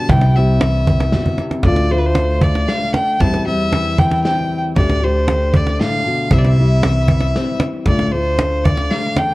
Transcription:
Already playing: A5
0.09 C2 C3 G3 C4 G5, kick, cajon bass, closed hi-hat
0.13 E4
0.21 cajon slap
0.36 G3 C4 E4 E5
0.61 E3, cajon slap, closed hi-hat
0.87 cajon bass
1.00 cajon slap
1.12 B2, cajon bass, snare, closed hi-hat
1.25 cajon bass
1.38 C3, cajon slap
1.51 cajon slap
1.63 D2 A3 D4 D5, cajon bass, kick, cajon slap, closed hi-hat
1.67 F4
1.76 cajon slap
1.91 A3 D4 F4 C5
1.98 B4
2.06 C5
2.15 D3, cajon slap, closed hi-hat
2.29 cajon slap
2.41 D5, cajon bass
2.55 cajon slap
2.69 F5, snare, closed hi-hat
2.94 D2 G5, cajon slap
3.20 E2 G3 C4 E4 A5, cajon bass, kick, cajon slap, closed hi-hat
3.34 cajon slap
3.46 G3 C4 E4 E5
3.72 E3, cajon slap, closed hi-hat
3.86 cajon slap
3.98 G5, cajon bass
4.11 cajon slap
4.24 C4 G5, snare, closed hi-hat
4.76 D2 A3 D4 G4 D5, cajon bass, kick, cajon slap, closed hi-hat
4.90 cajon slap
5.03 A3 D4 G4 C5
5.28 D3, cajon slap, closed hi-hat
5.41 cajon slap
5.54 D5, cajon bass
5.67 cajon slap
5.80 A2 F5, snare, closed hi-hat
6.06 B2
6.31 C2 C3 G3 C4 E4 E5, cajon bass, kick, closed hi-hat
6.38 D5
6.45 E5, cajon slap
6.57 G3 C4 E4, cajon slap
6.72 cajon slap
6.83 E3, cajon slap, closed hi-hat
7.08 cajon bass
7.20 cajon slap
7.34 C4, cajon slap, snare, closed hi-hat
7.60 cajon slap
7.73 cajon slap
7.86 D2 A3 D4 D5, cajon bass, kick, cajon slap, closed hi-hat
7.90 F4
7.99 cajon slap
8.06 D5
8.12 A3 D4 F4 C5
8.39 D3, cajon slap, closed hi-hat
8.52 cajon slap
8.64 D5, cajon bass
8.77 cajon slap
8.91 D2 F5, snare, closed hi-hat
9.16 E2 G5, cajon slap

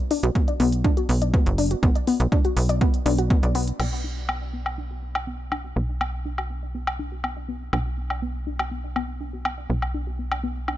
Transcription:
0.11 D4, open hi-hat
0.23 B1 F#4, closed hi-hat
0.35 B3, kick, closed hi-hat
0.48 D5, closed hi-hat
0.60 B1 B3, open hi-hat
0.73 closed hi-hat
0.84 D4, kick, closed hi-hat
0.97 F#4, closed hi-hat
1.09 B1 B3, open hi-hat
1.22 D5, closed hi-hat
1.34 B3, kick, closed hi-hat
1.46 F#1, closed hi-hat
1.58 D4, open hi-hat
1.71 F#4, closed hi-hat
1.83 B1 B3, kick, closed hi-hat
1.95 D5, closed hi-hat
2.07 B3, open hi-hat
2.20 B1, closed hi-hat
2.32 D4, kick, closed hi-hat
2.45 F#4, closed hi-hat
2.57 B1 B3, open hi-hat
2.69 D5, closed hi-hat
2.81 B3, kick, closed hi-hat
2.94 closed hi-hat
3.06 B1 D4, open hi-hat
3.18 F#4, closed hi-hat
3.30 B3, kick, closed hi-hat
3.43 B1 D5, closed hi-hat
3.55 B3, open hi-hat
3.68 closed hi-hat
3.80 B1 B3, crash, low woodblock
4.04 D4
4.17 F#4
4.29 B3, low woodblock
4.41 D5
4.53 B3
4.66 low woodblock
4.78 D4
4.91 F#4
5.03 B3
5.15 D5, low woodblock
5.27 B3
5.52 D4, low woodblock
5.64 F#4
5.76 B1 B3
5.89 D5
6.01 B3, low woodblock
6.25 D4
6.38 F#4, low woodblock
6.50 B3
6.63 D5
6.75 B3
6.87 low woodblock
6.99 D4
7.12 F#4
7.24 B3, low woodblock
7.37 D5
7.48 B3
7.73 B1 D4, low woodblock
7.86 F#4
7.98 B3
8.10 D5, low woodblock
8.22 B3
8.47 D4
8.59 F#4, low woodblock
8.71 B3
8.84 D5
8.96 B3, low woodblock
9.21 D4
9.33 F#4
9.45 B3, low woodblock
9.58 D5
9.70 B1 B3
9.82 low woodblock
9.94 D4
10.07 F#4
10.19 B3
10.32 D5, low woodblock
10.43 B3
10.68 D4, low woodblock

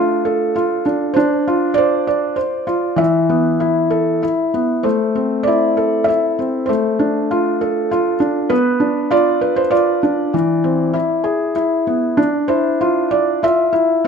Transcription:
Already playing: A3 D4 F4 C5
0.25 A4
0.56 F4
0.86 D4
1.14 D4 C5
1.48 F4
1.74 C5 D5
2.07 D5
2.36 C5
2.67 F4
2.96 E3 E5
3.29 B3
3.60 E4
3.90 A4
4.23 E4
4.54 B3
4.83 A3 C5
5.15 C4
5.43 D5
5.47 E4
5.77 A4
6.04 E5
6.08 E4
6.39 C4
6.66 A3 C5
6.99 D4
7.31 F4
7.61 A4
7.91 F4
8.20 D4
8.49 B3 B4
8.80 D4
9.11 F4 D5
9.41 B4
9.56 C5
9.71 F4 D5
10.03 D4
10.34 E3
10.64 C4
10.93 E4
11.24 G#4
11.56 E4
11.87 B3
12.17 D4
12.48 E4 C5
12.81 F4
13.11 D5
13.43 F4 E5
13.73 E4
14.04 C4

